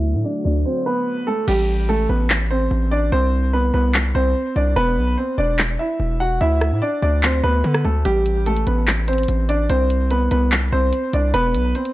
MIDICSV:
0, 0, Header, 1, 5, 480
1, 0, Start_track
1, 0, Tempo, 410959
1, 1724, Time_signature, 4, 2, 24, 8
1, 13938, End_track
2, 0, Start_track
2, 0, Title_t, "Grand piano"
2, 0, Program_c, 0, 0
2, 0, Note_on_c, 0, 64, 76
2, 0, Note_on_c, 0, 76, 95
2, 256, Note_off_c, 0, 76, 0
2, 262, Note_off_c, 0, 64, 0
2, 285, Note_on_c, 0, 74, 83
2, 295, Note_on_c, 0, 62, 68
2, 485, Note_off_c, 0, 74, 0
2, 491, Note_off_c, 0, 62, 0
2, 523, Note_on_c, 0, 74, 80
2, 533, Note_on_c, 0, 62, 52
2, 724, Note_off_c, 0, 74, 0
2, 730, Note_off_c, 0, 62, 0
2, 765, Note_on_c, 0, 72, 72
2, 775, Note_on_c, 0, 60, 62
2, 965, Note_off_c, 0, 72, 0
2, 971, Note_off_c, 0, 60, 0
2, 1005, Note_on_c, 0, 71, 95
2, 1014, Note_on_c, 0, 59, 65
2, 1456, Note_off_c, 0, 71, 0
2, 1461, Note_off_c, 0, 59, 0
2, 1482, Note_on_c, 0, 69, 79
2, 1492, Note_on_c, 0, 57, 59
2, 1683, Note_off_c, 0, 69, 0
2, 1689, Note_off_c, 0, 57, 0
2, 1725, Note_on_c, 0, 67, 111
2, 1734, Note_on_c, 0, 55, 82
2, 2176, Note_off_c, 0, 67, 0
2, 2181, Note_off_c, 0, 55, 0
2, 2205, Note_on_c, 0, 69, 90
2, 2214, Note_on_c, 0, 57, 77
2, 2405, Note_off_c, 0, 69, 0
2, 2410, Note_off_c, 0, 57, 0
2, 2445, Note_on_c, 0, 71, 67
2, 2454, Note_on_c, 0, 59, 54
2, 2645, Note_off_c, 0, 71, 0
2, 2650, Note_off_c, 0, 59, 0
2, 2927, Note_on_c, 0, 72, 78
2, 2936, Note_on_c, 0, 60, 62
2, 3377, Note_off_c, 0, 72, 0
2, 3382, Note_off_c, 0, 60, 0
2, 3404, Note_on_c, 0, 74, 84
2, 3413, Note_on_c, 0, 62, 64
2, 3604, Note_off_c, 0, 74, 0
2, 3609, Note_off_c, 0, 62, 0
2, 3647, Note_on_c, 0, 72, 94
2, 3658, Note_on_c, 0, 60, 74
2, 4097, Note_off_c, 0, 72, 0
2, 4103, Note_off_c, 0, 60, 0
2, 4127, Note_on_c, 0, 71, 74
2, 4136, Note_on_c, 0, 59, 61
2, 4326, Note_off_c, 0, 71, 0
2, 4332, Note_off_c, 0, 59, 0
2, 4364, Note_on_c, 0, 71, 73
2, 4373, Note_on_c, 0, 59, 61
2, 4565, Note_off_c, 0, 71, 0
2, 4570, Note_off_c, 0, 59, 0
2, 4847, Note_on_c, 0, 72, 85
2, 4856, Note_on_c, 0, 60, 72
2, 5297, Note_off_c, 0, 72, 0
2, 5302, Note_off_c, 0, 60, 0
2, 5326, Note_on_c, 0, 74, 77
2, 5335, Note_on_c, 0, 62, 59
2, 5525, Note_off_c, 0, 74, 0
2, 5531, Note_off_c, 0, 62, 0
2, 5563, Note_on_c, 0, 71, 121
2, 5572, Note_on_c, 0, 59, 92
2, 6015, Note_off_c, 0, 71, 0
2, 6020, Note_off_c, 0, 59, 0
2, 6044, Note_on_c, 0, 72, 72
2, 6053, Note_on_c, 0, 60, 60
2, 6245, Note_off_c, 0, 72, 0
2, 6250, Note_off_c, 0, 60, 0
2, 6284, Note_on_c, 0, 74, 89
2, 6293, Note_on_c, 0, 62, 65
2, 6485, Note_off_c, 0, 74, 0
2, 6490, Note_off_c, 0, 62, 0
2, 6766, Note_on_c, 0, 76, 82
2, 6775, Note_on_c, 0, 64, 61
2, 7216, Note_off_c, 0, 76, 0
2, 7221, Note_off_c, 0, 64, 0
2, 7244, Note_on_c, 0, 78, 80
2, 7254, Note_on_c, 0, 66, 61
2, 7445, Note_off_c, 0, 78, 0
2, 7450, Note_off_c, 0, 66, 0
2, 7484, Note_on_c, 0, 76, 95
2, 7494, Note_on_c, 0, 64, 80
2, 7936, Note_off_c, 0, 76, 0
2, 7940, Note_off_c, 0, 64, 0
2, 7963, Note_on_c, 0, 74, 85
2, 7972, Note_on_c, 0, 62, 67
2, 8164, Note_off_c, 0, 74, 0
2, 8169, Note_off_c, 0, 62, 0
2, 8204, Note_on_c, 0, 74, 82
2, 8213, Note_on_c, 0, 62, 56
2, 8405, Note_off_c, 0, 74, 0
2, 8410, Note_off_c, 0, 62, 0
2, 8445, Note_on_c, 0, 72, 76
2, 8454, Note_on_c, 0, 60, 65
2, 8645, Note_off_c, 0, 72, 0
2, 8651, Note_off_c, 0, 60, 0
2, 8684, Note_on_c, 0, 71, 95
2, 8694, Note_on_c, 0, 59, 65
2, 9135, Note_off_c, 0, 71, 0
2, 9140, Note_off_c, 0, 59, 0
2, 9162, Note_on_c, 0, 69, 78
2, 9172, Note_on_c, 0, 57, 58
2, 9364, Note_off_c, 0, 69, 0
2, 9369, Note_off_c, 0, 57, 0
2, 9403, Note_on_c, 0, 67, 112
2, 9413, Note_on_c, 0, 55, 83
2, 9855, Note_off_c, 0, 67, 0
2, 9860, Note_off_c, 0, 55, 0
2, 9885, Note_on_c, 0, 69, 89
2, 9895, Note_on_c, 0, 57, 74
2, 10085, Note_off_c, 0, 69, 0
2, 10091, Note_off_c, 0, 57, 0
2, 10124, Note_on_c, 0, 71, 67
2, 10133, Note_on_c, 0, 59, 54
2, 10324, Note_off_c, 0, 71, 0
2, 10330, Note_off_c, 0, 59, 0
2, 10605, Note_on_c, 0, 72, 75
2, 10615, Note_on_c, 0, 60, 63
2, 11056, Note_off_c, 0, 72, 0
2, 11061, Note_off_c, 0, 60, 0
2, 11082, Note_on_c, 0, 74, 83
2, 11091, Note_on_c, 0, 62, 66
2, 11283, Note_off_c, 0, 74, 0
2, 11288, Note_off_c, 0, 62, 0
2, 11326, Note_on_c, 0, 72, 91
2, 11336, Note_on_c, 0, 60, 77
2, 11777, Note_off_c, 0, 72, 0
2, 11782, Note_off_c, 0, 60, 0
2, 11808, Note_on_c, 0, 71, 77
2, 11816, Note_on_c, 0, 59, 62
2, 12007, Note_off_c, 0, 71, 0
2, 12012, Note_off_c, 0, 59, 0
2, 12045, Note_on_c, 0, 71, 74
2, 12054, Note_on_c, 0, 59, 60
2, 12245, Note_off_c, 0, 71, 0
2, 12250, Note_off_c, 0, 59, 0
2, 12527, Note_on_c, 0, 72, 88
2, 12536, Note_on_c, 0, 60, 68
2, 12977, Note_off_c, 0, 72, 0
2, 12982, Note_off_c, 0, 60, 0
2, 13005, Note_on_c, 0, 74, 75
2, 13015, Note_on_c, 0, 62, 58
2, 13205, Note_off_c, 0, 74, 0
2, 13211, Note_off_c, 0, 62, 0
2, 13243, Note_on_c, 0, 71, 120
2, 13253, Note_on_c, 0, 59, 93
2, 13695, Note_off_c, 0, 71, 0
2, 13700, Note_off_c, 0, 59, 0
2, 13727, Note_on_c, 0, 72, 73
2, 13735, Note_on_c, 0, 60, 64
2, 13926, Note_off_c, 0, 72, 0
2, 13931, Note_off_c, 0, 60, 0
2, 13938, End_track
3, 0, Start_track
3, 0, Title_t, "Analog synth pad"
3, 0, Program_c, 1, 89
3, 0, Note_on_c, 1, 50, 81
3, 0, Note_on_c, 1, 54, 78
3, 0, Note_on_c, 1, 57, 76
3, 0, Note_on_c, 1, 66, 91
3, 1686, Note_off_c, 1, 50, 0
3, 1705, Note_off_c, 1, 54, 0
3, 1705, Note_off_c, 1, 66, 0
3, 1706, Note_off_c, 1, 57, 0
3, 13938, End_track
4, 0, Start_track
4, 0, Title_t, "808-style bass"
4, 0, Program_c, 2, 38
4, 0, Note_on_c, 2, 38, 103
4, 165, Note_on_c, 2, 45, 95
4, 182, Note_off_c, 2, 38, 0
4, 278, Note_off_c, 2, 45, 0
4, 524, Note_on_c, 2, 38, 103
4, 755, Note_off_c, 2, 38, 0
4, 1725, Note_on_c, 2, 33, 111
4, 2416, Note_off_c, 2, 33, 0
4, 2445, Note_on_c, 2, 33, 99
4, 3136, Note_off_c, 2, 33, 0
4, 3165, Note_on_c, 2, 33, 100
4, 3625, Note_off_c, 2, 33, 0
4, 3645, Note_on_c, 2, 36, 114
4, 4336, Note_off_c, 2, 36, 0
4, 4365, Note_on_c, 2, 36, 99
4, 4826, Note_off_c, 2, 36, 0
4, 4845, Note_on_c, 2, 36, 103
4, 5075, Note_off_c, 2, 36, 0
4, 5325, Note_on_c, 2, 36, 105
4, 5555, Note_off_c, 2, 36, 0
4, 5565, Note_on_c, 2, 28, 108
4, 5805, Note_on_c, 2, 35, 103
4, 5822, Note_off_c, 2, 28, 0
4, 6033, Note_off_c, 2, 35, 0
4, 6284, Note_on_c, 2, 28, 102
4, 6745, Note_off_c, 2, 28, 0
4, 7004, Note_on_c, 2, 28, 102
4, 7465, Note_off_c, 2, 28, 0
4, 7485, Note_on_c, 2, 38, 107
4, 7845, Note_on_c, 2, 45, 97
4, 7862, Note_off_c, 2, 38, 0
4, 7959, Note_off_c, 2, 45, 0
4, 8204, Note_on_c, 2, 38, 105
4, 8665, Note_off_c, 2, 38, 0
4, 8684, Note_on_c, 2, 38, 101
4, 8915, Note_off_c, 2, 38, 0
4, 8925, Note_on_c, 2, 50, 105
4, 9155, Note_off_c, 2, 50, 0
4, 9165, Note_on_c, 2, 38, 104
4, 9395, Note_off_c, 2, 38, 0
4, 9405, Note_on_c, 2, 33, 110
4, 10096, Note_off_c, 2, 33, 0
4, 10124, Note_on_c, 2, 33, 104
4, 10816, Note_off_c, 2, 33, 0
4, 10845, Note_on_c, 2, 33, 101
4, 11305, Note_off_c, 2, 33, 0
4, 11324, Note_on_c, 2, 36, 110
4, 12015, Note_off_c, 2, 36, 0
4, 12045, Note_on_c, 2, 36, 102
4, 12505, Note_off_c, 2, 36, 0
4, 12525, Note_on_c, 2, 36, 104
4, 12755, Note_off_c, 2, 36, 0
4, 13004, Note_on_c, 2, 36, 107
4, 13234, Note_off_c, 2, 36, 0
4, 13245, Note_on_c, 2, 28, 104
4, 13484, Note_on_c, 2, 35, 96
4, 13502, Note_off_c, 2, 28, 0
4, 13712, Note_off_c, 2, 35, 0
4, 13938, End_track
5, 0, Start_track
5, 0, Title_t, "Drums"
5, 1725, Note_on_c, 9, 49, 96
5, 1842, Note_off_c, 9, 49, 0
5, 2686, Note_on_c, 9, 39, 122
5, 2803, Note_off_c, 9, 39, 0
5, 4606, Note_on_c, 9, 39, 121
5, 4722, Note_off_c, 9, 39, 0
5, 6525, Note_on_c, 9, 39, 120
5, 6642, Note_off_c, 9, 39, 0
5, 7725, Note_on_c, 9, 37, 69
5, 7842, Note_off_c, 9, 37, 0
5, 8445, Note_on_c, 9, 39, 126
5, 8562, Note_off_c, 9, 39, 0
5, 9045, Note_on_c, 9, 37, 95
5, 9162, Note_off_c, 9, 37, 0
5, 9405, Note_on_c, 9, 42, 78
5, 9522, Note_off_c, 9, 42, 0
5, 9646, Note_on_c, 9, 42, 87
5, 9762, Note_off_c, 9, 42, 0
5, 9885, Note_on_c, 9, 42, 53
5, 10002, Note_off_c, 9, 42, 0
5, 10005, Note_on_c, 9, 42, 55
5, 10122, Note_off_c, 9, 42, 0
5, 10124, Note_on_c, 9, 42, 75
5, 10241, Note_off_c, 9, 42, 0
5, 10365, Note_on_c, 9, 39, 117
5, 10365, Note_on_c, 9, 42, 90
5, 10482, Note_off_c, 9, 39, 0
5, 10482, Note_off_c, 9, 42, 0
5, 10605, Note_on_c, 9, 42, 62
5, 10665, Note_off_c, 9, 42, 0
5, 10665, Note_on_c, 9, 42, 61
5, 10725, Note_off_c, 9, 42, 0
5, 10725, Note_on_c, 9, 42, 59
5, 10785, Note_off_c, 9, 42, 0
5, 10785, Note_on_c, 9, 42, 59
5, 10843, Note_off_c, 9, 42, 0
5, 10843, Note_on_c, 9, 42, 78
5, 10960, Note_off_c, 9, 42, 0
5, 11085, Note_on_c, 9, 42, 75
5, 11202, Note_off_c, 9, 42, 0
5, 11325, Note_on_c, 9, 42, 78
5, 11441, Note_off_c, 9, 42, 0
5, 11565, Note_on_c, 9, 42, 90
5, 11682, Note_off_c, 9, 42, 0
5, 11804, Note_on_c, 9, 42, 66
5, 11920, Note_off_c, 9, 42, 0
5, 12044, Note_on_c, 9, 42, 84
5, 12160, Note_off_c, 9, 42, 0
5, 12285, Note_on_c, 9, 39, 119
5, 12285, Note_on_c, 9, 42, 90
5, 12402, Note_off_c, 9, 39, 0
5, 12402, Note_off_c, 9, 42, 0
5, 12762, Note_on_c, 9, 42, 80
5, 12879, Note_off_c, 9, 42, 0
5, 13005, Note_on_c, 9, 42, 70
5, 13122, Note_off_c, 9, 42, 0
5, 13245, Note_on_c, 9, 42, 75
5, 13361, Note_off_c, 9, 42, 0
5, 13485, Note_on_c, 9, 42, 90
5, 13602, Note_off_c, 9, 42, 0
5, 13725, Note_on_c, 9, 42, 55
5, 13841, Note_off_c, 9, 42, 0
5, 13844, Note_on_c, 9, 42, 55
5, 13938, Note_off_c, 9, 42, 0
5, 13938, End_track
0, 0, End_of_file